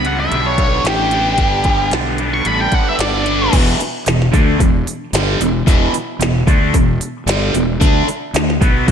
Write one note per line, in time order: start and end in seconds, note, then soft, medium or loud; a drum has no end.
0.00 0.30 C#2 medium
0.05 0.30 G2 medium
0.05 0.31 D3 medium
0.05 0.31 G3 medium
0.05 0.32 B3 medium
0.05 0.32 D4 medium
0.05 0.19 F#5 medium
0.05 closed hi-hat medium
0.20 0.45 E5 medium
0.31 0.83 B1 medium
0.31 0.58 G2 medium
0.31 0.58 D3 medium
0.31 0.58 G3 medium
0.31 0.60 B3 medium
0.31 0.59 D4 medium
0.31 closed hi-hat medium
0.46 0.85 C#5 medium
0.58 0.84 G2 medium
0.58 0.85 D3 medium
0.58 0.85 G3 medium
0.58 0.86 B3 medium
0.58 0.85 D4 medium
0.58 kick medium
0.58 closed hi-hat medium
0.84 1.37 A1 medium
0.84 1.11 G2 medium
0.84 1.11 D3 medium
0.84 1.12 G3 medium
0.84 1.13 B3 medium
0.84 1.12 D4 medium
0.84 1.90 G4 medium
0.84 snare loud
0.84 closed hi-hat medium
1.11 1.38 G2 medium
1.11 1.38 D3 medium
1.11 1.39 G3 medium
1.11 1.39 B3 medium
1.11 1.39 D4 medium
1.11 closed hi-hat medium
1.38 1.90 G1 medium
1.38 1.64 G2 medium
1.38 1.64 D3 medium
1.38 1.65 G3 medium
1.38 1.65 B3 loud
1.38 1.65 D4 loud
1.38 kick medium
1.38 closed hi-hat medium
1.64 1.91 G2 medium
1.64 1.91 D3 medium
1.64 1.91 G3 medium
1.64 1.92 B3 medium
1.64 1.92 D4 medium
1.64 kick medium
1.64 closed hi-hat medium
1.91 2.44 B1 medium
1.91 2.18 G2 medium
1.91 2.18 D3 medium
1.91 2.18 G3 medium
1.91 2.19 B3 medium
1.91 2.19 D4 medium
1.91 snare loud
1.91 closed hi-hat medium
2.18 2.44 G2 medium
2.18 2.44 D3 medium
2.18 2.45 G3 medium
2.18 2.44 B3 medium
2.18 2.45 D4 medium
2.18 closed hi-hat medium
2.34 2.47 C#6 medium
2.45 2.71 A1 medium
2.45 2.71 G2 medium
2.45 2.72 D3 medium
2.45 2.72 G3 medium
2.45 2.72 B3 medium
2.45 2.72 D4 medium
2.45 2.60 B5 medium
2.45 closed hi-hat medium
2.61 2.74 G5 medium
2.72 2.98 G2 medium
2.72 2.98 D3 medium
2.72 2.98 G3 medium
2.72 2.98 B3 medium
2.72 2.99 D4 medium
2.72 2.87 F#5 medium
2.72 muted fingered electric bass stroke soft
2.72 kick medium
2.72 closed hi-hat medium
2.89 3.00 E5 medium
2.99 3.51 G1 medium
2.99 3.24 G2 medium
2.99 3.25 D3 medium
2.99 3.25 G3 medium
2.99 3.25 B3 medium
2.99 3.25 D4 medium
2.99 3.52 D5 medium
2.99 snare loud
2.99 closed hi-hat medium
3.25 3.51 G2 medium
3.25 3.52 D3 medium
3.25 3.52 G3 medium
3.25 3.52 B3 medium
3.25 3.52 D4 medium
3.25 closed hi-hat medium
3.53 3.78 E1 loud
3.53 3.80 E2 medium
3.53 3.80 B2 loud
3.53 3.80 E3 loud
3.53 kick loud
3.53 open hi-hat medium
3.53 crash loud
3.80 muted fingered electric bass stroke soft
3.80 muted overdriven electric guitar stroke medium
3.80 open hi-hat medium
4.06 4.32 E1 medium
4.06 4.29 E2 medium
4.06 4.29 B2 medium
4.06 snare loud
4.06 open hi-hat medium
4.22 snare soft
4.32 4.59 D2 medium
4.32 4.59 D3 medium
4.32 4.60 A3 medium
4.32 4.60 D4 medium
4.32 kick loud
4.32 open hi-hat medium
4.59 4.85 E1 medium
4.59 4.82 E2 medium
4.59 4.82 B2 medium
4.59 kick medium
4.59 open hi-hat medium
4.87 open hi-hat medium
5.13 5.38 G1 medium
5.13 5.40 G2 medium
5.13 5.40 D3 loud
5.13 5.40 G3 loud
5.13 snare loud
5.13 open hi-hat medium
5.40 5.65 E1 medium
5.40 5.62 E2 medium
5.40 5.62 B2 medium
5.40 open hi-hat medium
5.66 5.92 E1 medium
5.66 5.92 E2 medium
5.66 5.93 B2 loud
5.66 5.93 E3 medium
5.66 kick loud
5.66 open hi-hat medium
5.93 muted fingered electric bass stroke soft
5.93 muted overdriven electric guitar stroke medium
5.93 open hi-hat medium
6.19 6.45 E1 medium
6.19 6.42 E2 medium
6.19 6.42 B2 medium
6.19 snare loud
6.19 open hi-hat medium
6.47 6.72 D2 medium
6.47 6.73 D3 medium
6.47 6.74 A3 medium
6.47 6.74 D4 medium
6.47 kick loud
6.47 open hi-hat medium
6.74 6.99 E1 medium
6.74 6.96 E2 medium
6.74 6.96 B2 medium
6.74 kick medium
6.74 open hi-hat medium
7.01 open hi-hat medium
7.26 7.52 G1 medium
7.26 7.53 G2 loud
7.26 7.54 D3 loud
7.26 7.54 G3 loud
7.26 snare loud
7.26 open hi-hat medium
7.54 7.79 E1 medium
7.54 7.76 E2 medium
7.54 7.76 B2 medium
7.54 open hi-hat medium
7.80 8.06 D2 loud
7.80 8.06 D3 loud
7.80 8.07 A3 loud
7.80 8.07 D4 loud
7.80 kick loud
7.80 open hi-hat medium
8.08 muted fingered electric bass stroke soft
8.08 muted overdriven electric guitar stroke medium
8.08 open hi-hat medium
8.34 8.59 D2 medium
8.34 8.56 D3 medium
8.34 8.56 A3 medium
8.34 snare loud
8.34 open hi-hat medium
8.50 snare soft
8.61 8.86 B1 medium
8.61 8.87 B2 medium
8.61 8.86 F#3 medium
8.61 8.88 B3 medium
8.61 kick loud
8.61 open hi-hat medium
8.87 8.91 F#2 medium
8.87 8.91 F#3 medium
8.87 8.91 C#4 medium
8.87 8.91 F#4 loud
8.87 kick loud
8.87 open hi-hat medium